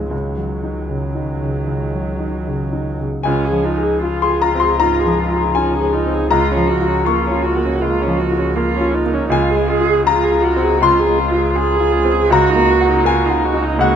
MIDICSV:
0, 0, Header, 1, 5, 480
1, 0, Start_track
1, 0, Key_signature, -5, "major"
1, 0, Tempo, 779221
1, 74, Time_signature, 4, 2, 24, 8
1, 2953, Tempo, 750939
1, 8811, End_track
2, 0, Start_track
2, 0, Title_t, "Cello"
2, 0, Program_c, 0, 42
2, 64, Note_on_c, 0, 51, 44
2, 1851, Note_off_c, 0, 51, 0
2, 1999, Note_on_c, 0, 61, 74
2, 2240, Note_on_c, 0, 63, 69
2, 2249, Note_off_c, 0, 61, 0
2, 2478, Note_off_c, 0, 63, 0
2, 2482, Note_on_c, 0, 65, 74
2, 3437, Note_on_c, 0, 61, 70
2, 3446, Note_off_c, 0, 65, 0
2, 3680, Note_on_c, 0, 63, 69
2, 3690, Note_off_c, 0, 61, 0
2, 3920, Note_off_c, 0, 63, 0
2, 3924, Note_on_c, 0, 65, 78
2, 4159, Note_on_c, 0, 66, 76
2, 4169, Note_off_c, 0, 65, 0
2, 4396, Note_on_c, 0, 65, 70
2, 4406, Note_off_c, 0, 66, 0
2, 4635, Note_on_c, 0, 66, 70
2, 4644, Note_off_c, 0, 65, 0
2, 4884, Note_on_c, 0, 65, 75
2, 4893, Note_off_c, 0, 66, 0
2, 5116, Note_on_c, 0, 66, 71
2, 5125, Note_off_c, 0, 65, 0
2, 5359, Note_on_c, 0, 65, 80
2, 5369, Note_off_c, 0, 66, 0
2, 5602, Note_on_c, 0, 63, 71
2, 5612, Note_off_c, 0, 65, 0
2, 5831, Note_on_c, 0, 65, 78
2, 5841, Note_off_c, 0, 63, 0
2, 6080, Note_on_c, 0, 68, 86
2, 6089, Note_off_c, 0, 65, 0
2, 6323, Note_off_c, 0, 68, 0
2, 6325, Note_on_c, 0, 65, 75
2, 6556, Note_on_c, 0, 66, 82
2, 6566, Note_off_c, 0, 65, 0
2, 6797, Note_on_c, 0, 65, 88
2, 6807, Note_off_c, 0, 66, 0
2, 7277, Note_on_c, 0, 68, 91
2, 7287, Note_off_c, 0, 65, 0
2, 7753, Note_on_c, 0, 66, 98
2, 7763, Note_off_c, 0, 68, 0
2, 8226, Note_on_c, 0, 65, 83
2, 8235, Note_off_c, 0, 66, 0
2, 8474, Note_on_c, 0, 63, 82
2, 8484, Note_off_c, 0, 65, 0
2, 8704, Note_off_c, 0, 63, 0
2, 8708, Note_on_c, 0, 58, 85
2, 8811, Note_off_c, 0, 58, 0
2, 8811, End_track
3, 0, Start_track
3, 0, Title_t, "Viola"
3, 0, Program_c, 1, 41
3, 73, Note_on_c, 1, 54, 42
3, 1855, Note_off_c, 1, 54, 0
3, 2011, Note_on_c, 1, 65, 58
3, 2128, Note_on_c, 1, 68, 53
3, 2138, Note_off_c, 1, 65, 0
3, 2248, Note_on_c, 1, 65, 53
3, 2258, Note_off_c, 1, 68, 0
3, 2363, Note_on_c, 1, 68, 52
3, 2372, Note_off_c, 1, 65, 0
3, 2478, Note_off_c, 1, 68, 0
3, 2482, Note_on_c, 1, 65, 56
3, 2601, Note_on_c, 1, 68, 58
3, 2610, Note_off_c, 1, 65, 0
3, 2720, Note_on_c, 1, 65, 57
3, 2730, Note_off_c, 1, 68, 0
3, 2847, Note_on_c, 1, 68, 52
3, 2856, Note_off_c, 1, 65, 0
3, 2954, Note_off_c, 1, 68, 0
3, 2958, Note_on_c, 1, 65, 58
3, 3084, Note_on_c, 1, 68, 53
3, 3094, Note_off_c, 1, 65, 0
3, 3205, Note_on_c, 1, 65, 53
3, 3215, Note_off_c, 1, 68, 0
3, 3325, Note_on_c, 1, 68, 53
3, 3334, Note_off_c, 1, 65, 0
3, 3438, Note_off_c, 1, 68, 0
3, 3442, Note_on_c, 1, 65, 53
3, 3560, Note_on_c, 1, 68, 51
3, 3570, Note_off_c, 1, 65, 0
3, 3679, Note_on_c, 1, 65, 53
3, 3688, Note_off_c, 1, 68, 0
3, 3810, Note_on_c, 1, 68, 55
3, 3820, Note_off_c, 1, 65, 0
3, 3924, Note_off_c, 1, 68, 0
3, 3928, Note_on_c, 1, 65, 63
3, 4053, Note_on_c, 1, 61, 57
3, 4063, Note_off_c, 1, 65, 0
3, 4168, Note_on_c, 1, 65, 58
3, 4178, Note_off_c, 1, 61, 0
3, 4286, Note_on_c, 1, 61, 55
3, 4296, Note_off_c, 1, 65, 0
3, 4405, Note_off_c, 1, 61, 0
3, 4409, Note_on_c, 1, 65, 58
3, 4535, Note_on_c, 1, 61, 57
3, 4545, Note_off_c, 1, 65, 0
3, 4656, Note_on_c, 1, 65, 54
3, 4665, Note_off_c, 1, 61, 0
3, 4780, Note_on_c, 1, 61, 53
3, 4790, Note_off_c, 1, 65, 0
3, 4886, Note_off_c, 1, 61, 0
3, 4890, Note_on_c, 1, 65, 58
3, 5012, Note_on_c, 1, 61, 55
3, 5022, Note_off_c, 1, 65, 0
3, 5136, Note_on_c, 1, 65, 57
3, 5145, Note_off_c, 1, 61, 0
3, 5250, Note_on_c, 1, 61, 52
3, 5260, Note_off_c, 1, 65, 0
3, 5363, Note_off_c, 1, 61, 0
3, 5367, Note_on_c, 1, 65, 54
3, 5489, Note_on_c, 1, 61, 61
3, 5498, Note_off_c, 1, 65, 0
3, 5609, Note_on_c, 1, 65, 58
3, 5618, Note_off_c, 1, 61, 0
3, 5728, Note_on_c, 1, 61, 57
3, 5737, Note_off_c, 1, 65, 0
3, 5830, Note_off_c, 1, 61, 0
3, 5834, Note_on_c, 1, 65, 67
3, 5963, Note_on_c, 1, 68, 63
3, 5973, Note_off_c, 1, 65, 0
3, 6078, Note_on_c, 1, 65, 57
3, 6088, Note_off_c, 1, 68, 0
3, 6200, Note_on_c, 1, 68, 61
3, 6209, Note_off_c, 1, 65, 0
3, 6314, Note_off_c, 1, 68, 0
3, 6318, Note_on_c, 1, 65, 65
3, 6433, Note_on_c, 1, 68, 63
3, 6442, Note_off_c, 1, 65, 0
3, 6553, Note_on_c, 1, 65, 61
3, 6562, Note_off_c, 1, 68, 0
3, 6684, Note_on_c, 1, 68, 61
3, 6693, Note_off_c, 1, 65, 0
3, 6799, Note_off_c, 1, 68, 0
3, 6803, Note_on_c, 1, 65, 59
3, 6915, Note_on_c, 1, 68, 62
3, 6924, Note_off_c, 1, 65, 0
3, 7042, Note_on_c, 1, 65, 65
3, 7051, Note_off_c, 1, 68, 0
3, 7156, Note_on_c, 1, 68, 58
3, 7165, Note_off_c, 1, 65, 0
3, 7273, Note_off_c, 1, 68, 0
3, 7277, Note_on_c, 1, 65, 61
3, 7401, Note_on_c, 1, 68, 61
3, 7410, Note_off_c, 1, 65, 0
3, 7510, Note_on_c, 1, 65, 60
3, 7520, Note_off_c, 1, 68, 0
3, 7639, Note_on_c, 1, 68, 66
3, 7648, Note_off_c, 1, 65, 0
3, 7747, Note_off_c, 1, 68, 0
3, 7751, Note_on_c, 1, 66, 75
3, 7878, Note_on_c, 1, 63, 68
3, 7887, Note_off_c, 1, 66, 0
3, 8007, Note_on_c, 1, 66, 65
3, 8016, Note_off_c, 1, 63, 0
3, 8121, Note_on_c, 1, 63, 70
3, 8131, Note_off_c, 1, 66, 0
3, 8236, Note_off_c, 1, 63, 0
3, 8240, Note_on_c, 1, 66, 73
3, 8361, Note_on_c, 1, 63, 66
3, 8371, Note_off_c, 1, 66, 0
3, 8488, Note_on_c, 1, 66, 67
3, 8498, Note_off_c, 1, 63, 0
3, 8607, Note_on_c, 1, 63, 71
3, 8617, Note_off_c, 1, 66, 0
3, 8722, Note_off_c, 1, 63, 0
3, 8730, Note_on_c, 1, 66, 72
3, 8811, Note_off_c, 1, 66, 0
3, 8811, End_track
4, 0, Start_track
4, 0, Title_t, "Upright piano"
4, 0, Program_c, 2, 0
4, 0, Control_c, 2, 64, 127
4, 0, Note_on_c, 2, 37, 43
4, 0, Note_on_c, 2, 44, 32
4, 0, Note_on_c, 2, 53, 37
4, 0, Note_on_c, 2, 60, 39
4, 66, Note_off_c, 2, 37, 0
4, 66, Note_on_c, 2, 37, 44
4, 69, Note_off_c, 2, 44, 0
4, 86, Control_c, 2, 64, 0
4, 88, Note_off_c, 2, 53, 0
4, 92, Note_off_c, 2, 60, 0
4, 200, Control_c, 2, 64, 127
4, 228, Note_on_c, 2, 54, 34
4, 391, Note_on_c, 2, 63, 32
4, 490, Note_off_c, 2, 54, 0
4, 546, Note_on_c, 2, 49, 29
4, 652, Note_off_c, 2, 63, 0
4, 710, Note_on_c, 2, 63, 30
4, 811, Note_off_c, 2, 49, 0
4, 873, Note_on_c, 2, 49, 30
4, 974, Note_off_c, 2, 63, 0
4, 1015, Note_off_c, 2, 37, 0
4, 1031, Note_on_c, 2, 37, 34
4, 1136, Note_off_c, 2, 49, 0
4, 1196, Note_on_c, 2, 54, 31
4, 1356, Note_on_c, 2, 63, 29
4, 1458, Note_off_c, 2, 54, 0
4, 1521, Note_on_c, 2, 49, 33
4, 1617, Note_off_c, 2, 63, 0
4, 1679, Note_on_c, 2, 63, 35
4, 1780, Note_off_c, 2, 49, 0
4, 1843, Note_on_c, 2, 49, 30
4, 1939, Note_off_c, 2, 63, 0
4, 1975, Note_off_c, 2, 37, 0
4, 1992, Note_on_c, 2, 80, 83
4, 2003, Note_on_c, 2, 37, 65
4, 2004, Note_off_c, 2, 49, 0
4, 2018, Control_c, 2, 64, 0
4, 2104, Control_c, 2, 64, 127
4, 2164, Note_on_c, 2, 53, 48
4, 2325, Note_on_c, 2, 68, 53
4, 2419, Note_off_c, 2, 53, 0
4, 2483, Note_on_c, 2, 65, 54
4, 2569, Note_off_c, 2, 80, 0
4, 2578, Note_off_c, 2, 68, 0
4, 2601, Note_on_c, 2, 84, 78
4, 2642, Note_on_c, 2, 68, 53
4, 2711, Note_off_c, 2, 84, 0
4, 2720, Note_on_c, 2, 82, 85
4, 2735, Note_off_c, 2, 65, 0
4, 2800, Note_on_c, 2, 60, 48
4, 2829, Note_off_c, 2, 82, 0
4, 2833, Note_on_c, 2, 84, 87
4, 2893, Note_off_c, 2, 68, 0
4, 2929, Note_off_c, 2, 37, 0
4, 2944, Note_off_c, 2, 84, 0
4, 2954, Note_on_c, 2, 82, 91
4, 2956, Note_on_c, 2, 44, 54
4, 3054, Note_off_c, 2, 60, 0
4, 3120, Note_on_c, 2, 53, 51
4, 3215, Note_off_c, 2, 44, 0
4, 3282, Note_on_c, 2, 68, 50
4, 3376, Note_off_c, 2, 53, 0
4, 3414, Note_off_c, 2, 82, 0
4, 3435, Note_on_c, 2, 80, 85
4, 3441, Note_on_c, 2, 65, 54
4, 3538, Note_off_c, 2, 68, 0
4, 3603, Note_on_c, 2, 68, 62
4, 3699, Note_off_c, 2, 65, 0
4, 3767, Note_on_c, 2, 60, 53
4, 3861, Note_off_c, 2, 68, 0
4, 3897, Note_off_c, 2, 80, 0
4, 3919, Note_on_c, 2, 82, 92
4, 3923, Note_on_c, 2, 37, 67
4, 3926, Note_off_c, 2, 60, 0
4, 3938, Control_c, 2, 64, 0
4, 4031, Control_c, 2, 64, 127
4, 4084, Note_on_c, 2, 53, 55
4, 4244, Note_on_c, 2, 65, 55
4, 4343, Note_off_c, 2, 53, 0
4, 4380, Note_off_c, 2, 82, 0
4, 4404, Note_on_c, 2, 85, 88
4, 4408, Note_on_c, 2, 58, 53
4, 4503, Note_off_c, 2, 65, 0
4, 4562, Note_on_c, 2, 65, 54
4, 4666, Note_off_c, 2, 58, 0
4, 4726, Note_on_c, 2, 58, 51
4, 4823, Note_off_c, 2, 65, 0
4, 4865, Note_off_c, 2, 37, 0
4, 4885, Note_on_c, 2, 37, 59
4, 4985, Note_off_c, 2, 58, 0
4, 5047, Note_on_c, 2, 53, 51
4, 5205, Note_on_c, 2, 65, 56
4, 5305, Note_off_c, 2, 53, 0
4, 5361, Note_on_c, 2, 58, 66
4, 5463, Note_off_c, 2, 65, 0
4, 5518, Note_on_c, 2, 65, 61
4, 5582, Note_off_c, 2, 85, 0
4, 5619, Note_off_c, 2, 58, 0
4, 5681, Note_on_c, 2, 58, 56
4, 5777, Note_off_c, 2, 65, 0
4, 5818, Note_off_c, 2, 37, 0
4, 5832, Note_on_c, 2, 37, 72
4, 5843, Note_off_c, 2, 58, 0
4, 5844, Note_on_c, 2, 80, 97
4, 5857, Control_c, 2, 64, 0
4, 5970, Control_c, 2, 64, 127
4, 5997, Note_on_c, 2, 56, 61
4, 6156, Note_on_c, 2, 65, 59
4, 6257, Note_off_c, 2, 56, 0
4, 6299, Note_off_c, 2, 80, 0
4, 6320, Note_on_c, 2, 68, 59
4, 6324, Note_on_c, 2, 82, 96
4, 6417, Note_off_c, 2, 65, 0
4, 6482, Note_on_c, 2, 65, 54
4, 6580, Note_off_c, 2, 68, 0
4, 6642, Note_on_c, 2, 60, 58
4, 6741, Note_off_c, 2, 65, 0
4, 6774, Note_off_c, 2, 37, 0
4, 6781, Note_off_c, 2, 82, 0
4, 6802, Note_on_c, 2, 37, 66
4, 6810, Note_on_c, 2, 84, 101
4, 6901, Note_off_c, 2, 60, 0
4, 6959, Note_on_c, 2, 56, 57
4, 7121, Note_on_c, 2, 65, 60
4, 7218, Note_off_c, 2, 56, 0
4, 7275, Note_on_c, 2, 68, 68
4, 7378, Note_off_c, 2, 65, 0
4, 7433, Note_on_c, 2, 65, 69
4, 7535, Note_off_c, 2, 68, 0
4, 7586, Note_on_c, 2, 60, 61
4, 7695, Note_off_c, 2, 65, 0
4, 7737, Note_off_c, 2, 37, 0
4, 7741, Note_off_c, 2, 84, 0
4, 7753, Note_on_c, 2, 37, 80
4, 7756, Note_off_c, 2, 60, 0
4, 7766, Note_on_c, 2, 82, 98
4, 7777, Control_c, 2, 64, 0
4, 7888, Control_c, 2, 64, 127
4, 7912, Note_on_c, 2, 58, 63
4, 8075, Note_on_c, 2, 66, 64
4, 8174, Note_off_c, 2, 58, 0
4, 8219, Note_off_c, 2, 82, 0
4, 8233, Note_on_c, 2, 70, 64
4, 8238, Note_on_c, 2, 80, 105
4, 8334, Note_off_c, 2, 66, 0
4, 8387, Note_on_c, 2, 66, 62
4, 8492, Note_off_c, 2, 70, 0
4, 8543, Note_on_c, 2, 63, 66
4, 8648, Note_off_c, 2, 66, 0
4, 8688, Note_off_c, 2, 37, 0
4, 8691, Note_off_c, 2, 80, 0
4, 8701, Note_on_c, 2, 37, 77
4, 8714, Note_on_c, 2, 78, 100
4, 8805, Note_off_c, 2, 63, 0
4, 8811, Note_off_c, 2, 37, 0
4, 8811, Note_off_c, 2, 78, 0
4, 8811, End_track
5, 0, Start_track
5, 0, Title_t, "Double bass"
5, 0, Program_c, 3, 43
5, 0, Note_on_c, 3, 37, 52
5, 1981, Note_off_c, 3, 37, 0
5, 2003, Note_on_c, 3, 37, 68
5, 5819, Note_off_c, 3, 37, 0
5, 5844, Note_on_c, 3, 37, 73
5, 8811, Note_off_c, 3, 37, 0
5, 8811, End_track
0, 0, End_of_file